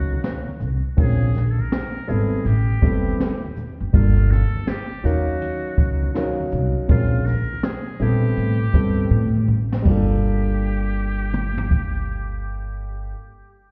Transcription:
0.00 0.16 C#2 medium
0.00 0.47 F#3 medium
0.00 0.48 C#4 medium
0.00 0.48 D#4 medium
0.00 0.61 F#4 medium
0.00 0.48 A#4 medium
0.00 0.48 F5 medium
0.10 high conga medium
0.10 shaker soft
0.23 snare medium
0.23 closed hi-hat medium
0.23 shaker medium
0.48 high conga medium
0.48 shaker soft
0.60 0.79 C2 medium
0.60 low conga medium
0.60 shaker soft
0.84 shaker soft
0.97 1.57 A#1 loud
0.97 1.26 G#3 medium
0.97 1.27 C4 medium
0.97 1.27 C#4 medium
0.97 1.27 F4 medium
0.97 1.27 A#4 medium
0.97 kick loud
0.97 closed hi-hat loud
0.97 shaker medium
1.01 1.52 G#4 loud
1.21 shaker soft
1.35 snare soft
1.35 closed hi-hat soft
1.35 high conga soft
1.35 low conga medium
1.35 shaker soft
1.51 1.62 A4 medium
1.59 2.11 A#4 loud
1.59 high conga medium
1.59 shaker soft
1.71 snare loud
1.71 closed hi-hat medium
1.71 shaker medium
1.95 shaker soft
2.07 2.38 G#1 medium
2.07 2.37 G3 medium
2.07 2.37 B3 medium
2.07 2.38 C4 medium
2.07 2.38 E4 medium
2.07 2.48 G#4 medium
2.07 2.38 A4 medium
2.07 low conga medium
2.07 shaker soft
2.07 shaker medium
2.33 shaker soft
2.45 2.74 A1 medium
2.45 3.57 G4 medium
2.45 closed hi-hat medium
2.45 high conga soft
2.45 shaker medium
2.71 shaker soft
2.82 3.12 F#1 medium
2.82 3.29 G3 medium
2.82 3.29 B3 medium
2.82 3.30 C4 medium
2.82 3.30 E4 medium
2.82 3.30 A4 medium
2.82 kick medium
2.82 closed hi-hat medium
2.82 shaker soft
2.82 shaker medium
3.08 high conga medium
3.08 shaker soft
3.20 snare loud
3.20 closed hi-hat medium
3.20 shaker medium
3.46 high conga medium
3.46 shaker soft
3.57 low conga medium
3.57 shaker soft
3.81 3.91 F#1 medium
3.81 shaker soft
3.93 4.42 G1 loud
3.93 4.40 G3 medium
3.93 4.40 A#3 medium
3.93 4.41 D4 medium
3.93 4.41 F4 medium
3.93 4.32 F4 medium
3.93 4.41 A4 medium
3.93 kick loud
3.93 closed hi-hat medium
3.93 shaker medium
4.19 shaker soft
4.31 4.70 A4 loud
4.31 snare soft
4.31 high conga soft
4.31 low conga medium
4.31 shaker soft
4.55 high conga medium
4.55 shaker soft
4.67 5.07 G4 loud
4.67 snare loud
4.67 closed hi-hat medium
4.67 shaker medium
4.91 shaker soft
5.03 5.34 D#2 loud
5.03 6.06 F#3 medium
5.03 6.06 C#4 medium
5.03 6.07 D#4 medium
5.03 6.53 F#4 loud
5.03 6.07 A#4 medium
5.03 6.07 F5 medium
5.03 low conga medium
5.03 shaker soft
5.03 shaker medium
5.29 shaker soft
5.41 closed hi-hat medium
5.41 high conga soft
5.41 shaker medium
5.67 shaker soft
5.78 6.08 C#2 medium
5.78 kick medium
5.78 closed hi-hat medium
5.78 shaker medium
6.03 high conga medium
6.03 shaker soft
6.14 6.89 F#3 medium
6.14 6.88 C#4 medium
6.14 6.90 D#4 medium
6.14 6.89 A#4 medium
6.14 6.90 F5 medium
6.14 snare loud
6.14 closed hi-hat medium
6.14 shaker medium
6.41 high conga medium
6.41 shaker soft
6.52 6.72 C2 medium
6.52 low conga medium
6.52 shaker medium
6.52 shaker soft
6.78 shaker soft
6.88 7.38 A#1 loud
6.88 7.18 G#3 medium
6.88 7.19 C4 medium
6.88 7.19 C#4 medium
6.88 7.19 F4 medium
6.88 7.28 F4 medium
6.88 7.19 A#4 medium
6.88 kick loud
6.88 closed hi-hat medium
6.88 shaker medium
7.15 shaker soft
7.26 7.66 A#4 loud
7.26 snare soft
7.26 high conga soft
7.26 low conga medium
7.26 shaker soft
7.28 shaker soft
7.53 high conga medium
7.53 shaker soft
7.63 8.04 G#4 loud
7.63 snare loud
7.63 closed hi-hat medium
7.63 shaker medium
7.89 shaker soft
8.00 8.30 A#1 medium
8.00 8.57 G3 medium
8.00 8.57 B3 medium
8.00 8.57 C4 medium
8.00 8.57 E4 medium
8.00 9.50 G4 loud
8.00 8.57 A4 medium
8.00 low conga medium
8.00 shaker soft
8.26 shaker soft
8.36 8.67 A2 medium
8.36 closed hi-hat medium
8.36 high conga soft
8.36 shaker medium
8.63 shaker soft
8.73 9.04 G2 medium
8.73 9.21 G3 medium
8.73 9.21 B3 medium
8.73 9.22 C4 medium
8.73 9.22 E4 medium
8.73 9.22 A4 medium
8.73 kick medium
8.73 shaker medium
8.73 shaker soft
8.99 high conga medium
8.99 shaker soft
9.11 9.49 A2 loud
9.11 shaker medium
9.36 high conga medium
9.36 shaker soft
9.48 9.78 A1 medium
9.48 low conga medium
9.48 shaker soft
9.72 snare medium
9.72 shaker soft
9.82 13.13 G1 medium
9.82 13.10 G3 medium
9.82 13.12 A#3 medium
9.82 kick loud
9.82 crash medium
9.82 high conga medium
9.86 13.14 D4 medium
9.86 13.16 F4 medium
9.86 13.15 G4 medium
9.90 13.18 A4 medium
11.34 mid tom medium
11.58 floor tom medium
11.71 kick medium

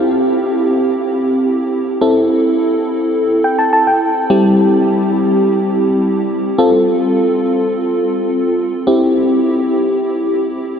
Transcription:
0.00 1.97 C4 medium
0.00 1.97 E4 medium
0.00 1.97 G4 medium
2.01 4.26 C4 medium
2.01 4.26 E4 medium
2.01 4.26 A4 medium
3.44 3.58 G5 medium
3.59 3.72 A5 medium
3.73 3.86 A5 medium
3.87 4.27 G5 medium
4.30 6.55 G3 medium
4.30 6.55 C4 medium
4.30 6.55 E4 medium
4.30 6.55 G4 medium
6.58 8.83 C4 medium
6.58 8.83 F4 medium
6.58 8.83 A4 medium
8.87 10.79 C4 medium
8.87 10.79 E4 medium
8.87 10.79 G4 medium

